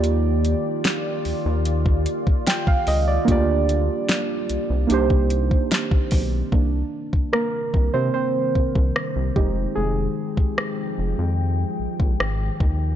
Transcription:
<<
  \new Staff \with { instrumentName = "Synth keys" } { \time 4/4 \key c \minor \tempo 4 = 74 << { r2. g''16 f''16 ees''16 d''16~ | d''16 r2. r8. | r4 <bes bes'>8. <c' c''>16 <c' c''>2 | <aes aes'>2.~ <aes aes'>8 r8 | } \\ { <bes ees' f' g' d''>2.~ <bes ees' f' g' d''>8 r8 | <bes d' f' g' d''>2 <bes d' ees' g' c''>2 | <ees bes d'>2.~ <ees bes d'>8 <aes ees' g'>8~ | <aes ees' g'>2.~ <aes ees' g'>8 r8 | } >> }
  \new Staff \with { instrumentName = "Ambient pad" } { \time 4/4 \key c \minor <ees f' g' d''>1 | <g bes>2 <ees c' d''>2 | <c ees g bes>2.~ <c ees g bes>8 <f aes g''>8~ | <f aes g''>2.~ <f aes g''>8 <ees d' f'>8 | }
  \new Staff \with { instrumentName = "Analog synth bass" } { \clef bass \time 4/4 \key c \minor ees,4 r8 ees,16 ees,4 r8. des,8 | d,4 r8 c,16 c,16 c,4 r8 b,,8 | c,8 r4 c,16 c16 r8 c,16 c,16 r16 c,16 f,,8 | f,,8 r4 f,,16 f,8. bes,,16 bes,,16 aes,,8 ees,8 | }
  \new DrumStaff \with { instrumentName = "Drums" } \drummode { \time 4/4 hh8 hh8 <hh sn>8 hho8 hh16 bd16 hh16 bd16 <hh sn>16 bd16 hho8 | <hh bd>8 hh8 <hh sn>8 hh8 hh16 bd16 hh16 bd16 <hh sn>16 bd16 <hho bd>8 | bd8. bd16 ss8 bd8 r8 bd16 bd16 ss8 bd8 | r8. bd16 ss4 r8. bd16 ss8 bd8 | }
>>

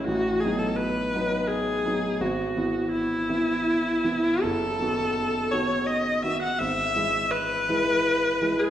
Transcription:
<<
  \new Staff \with { instrumentName = "Viola" } { \time 3/4 \key e \major \tempo 4 = 83 fis'8 gis'16 a'16 b'4 gis'4 | fis'4 e'2 | a'4. cis''8 dis''8 e''16 fis''16 | e''4 b'4.~ b'16 gis'16 | }
  \new Staff \with { instrumentName = "Grand piano" } { \time 3/4 \key e \major a,,8 <fis b dis'>4 <fis b dis'>4 <fis b dis'>8 | gis,,8 <e b e'>4 <e b e'>4 <e b e'>8 | fis,,8 <dis b fis'>4 <dis b fis'>4 <dis b fis'>8 | gis,,8 <e gis e'>4 <e gis e'>4 <e gis e'>8 | }
>>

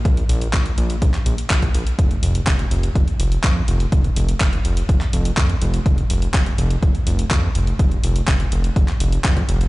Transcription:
<<
  \new Staff \with { instrumentName = "Analog synth bass" } { \clef bass \time 4/4 \key f \phrygian \tempo 4 = 124 bes,,8 bes,,8 bes,,8 bes,,8 bes,,8 bes,,8 bes,,8 bes,,8 | f,,8 f,,8 f,,8 f,,8 f,,8 f,,8 f,8 f,,8 | f,,8 f,,8 f,,8 f,,8 f,,8 f,,8 f,8 f,,8 | f,,8 f,,8 f,,8 f,,8 f,,8 f,,8 f,8 f,,8 |
f,,8 f,,8 f,,8 f,,8 f,,8 f,,8 f,8 f,,8 | }
  \new DrumStaff \with { instrumentName = "Drums" } \drummode { \time 4/4 <hh bd>16 hh16 hho16 hh16 <hc hh bd>16 hh16 hho16 hh16 <hh bd>16 <hc hh>16 hho16 hh16 <hc hh bd>16 <hh bd>16 hho16 hh16 | <hh bd>16 hh16 hho16 hh16 <hc hh bd>16 hh16 hho16 hh16 <hh bd>16 hh16 hho16 hh16 <hc hh bd>8 hho16 hh16 | <hh bd>16 hh16 hho16 hh16 <hc hh bd>16 hh16 hho16 hh16 <hh bd>16 <hc hh>16 hho16 hh16 <hc hh bd>16 hh16 hho16 hh16 | <hh bd>16 hh16 hho16 hh16 <hc hh bd>16 hh16 hho16 hh16 <hh bd>16 hh16 hho16 hh16 <hc hh bd>8 hho16 hh16 |
<hh bd>16 hh16 hho16 hh16 <hc hh bd>16 hh16 hho16 hh16 <hh bd>16 <hc hh>16 hho16 hh16 <hc hh bd>16 <hh bd>16 hho16 hh16 | }
>>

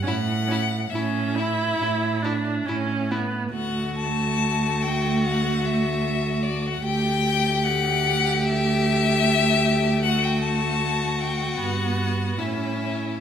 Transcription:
<<
  \new Staff \with { instrumentName = "Violin" } { \time 4/4 \key d \major \tempo 4 = 74 fis''4 e''2 r4 | fis''8 a''4 g''8 fis''8 e''4 d''16 fis''16 | g''4 fis''4 e''2 | fis''16 g''16 a''4 g''8 fis''4 e''4 | }
  \new Staff \with { instrumentName = "Violin" } { \time 4/4 \key d \major e'8 e'8 e'8 e'8 e'8 e'8 e'8 e'8 | fis'1 | g'1 | fis'2. e'4 | }
  \new Staff \with { instrumentName = "Viola" } { \time 4/4 \key d \major cis'8 cis'8 cis'8 e'4 d'8 cis'8 b8 | a1 | a1~ | a2 b4 cis'4 | }
  \new Staff \with { instrumentName = "Cello" } { \clef bass \time 4/4 \key d \major a,4 a,4 a,4 a,4 | d,1 | d,1~ | d,2 g,4 a,4 | }
>>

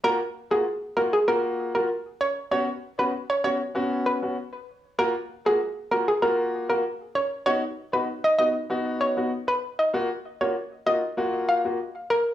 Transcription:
<<
  \new Staff \with { instrumentName = "Synth pluck" } { \time 4/4 \key fis \major \tempo 4 = 97 ais'16 r8 gis'16 r8 ais'16 gis'16 ais'16 r8 ais'16 r8 cis''16 r16 | cis''16 r8 b'16 r16 cis''16 cis''16 r8. b'16 r4 r16 | ais'16 r8 gis'16 r8 ais'16 gis'16 ais'16 r8 ais'16 r8 cis''16 r16 | cis''16 r8 b'16 r16 dis''16 dis''16 r8. cis''16 r8 b'16 r16 dis''16 |
r8. cis''8 r16 dis''8 r8 eis''16 r8. ais'16 r16 | }
  \new Staff \with { instrumentName = "Grand piano" } { \time 4/4 \key fis \major <ais eis' fis'>16 r8 <ais eis' fis'>16 r8 <ais eis' fis'>16 r16 <ais eis' fis'>8. <ais eis' fis'>16 r4 | <b cis' fis'>16 r8 <b cis' fis'>16 r8 <b cis' fis'>16 r16 <b cis' fis'>8. <b cis' fis'>16 r4 | <ais eis' fis'>16 r8 <ais eis' fis'>16 r8 <ais eis' fis'>16 r16 <ais eis' fis'>8. <ais eis' fis'>16 r4 | <b dis' fis'>16 r8 <b dis' fis'>16 r8 <b dis' fis'>16 r16 <b dis' fis'>8. <b dis' fis'>16 r4 |
<ais eis' fis'>16 r8 <ais eis' fis'>16 r8 <ais eis' fis'>16 r16 <ais eis' fis'>8. <ais eis' fis'>16 r4 | }
>>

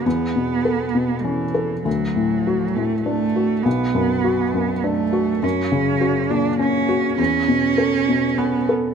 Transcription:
<<
  \new Staff \with { instrumentName = "Cello" } { \time 3/4 \key a \mixolydian \tempo 4 = 101 b2 e4 | fis4. a8 a4 | b2 a4 | cis'4. d'8 cis'4 |
cis'2 b8 r8 | }
  \new Staff \with { instrumentName = "Felt piano" } { \clef bass \time 3/4 \key a \mixolydian e,8 b,8 a'8 b,8 cis'8 a'8 | d,8 a,8 fis'8 a,8 d'8 fis'8 | b,,8 fis,8 fis'8 fis,8 d'8 fis'8 | fis,8 cis8 fis'8 ais,8 cis'8 fis'8 |
e,8 b,8 a'8 b,8 cis'8 a'8 | }
>>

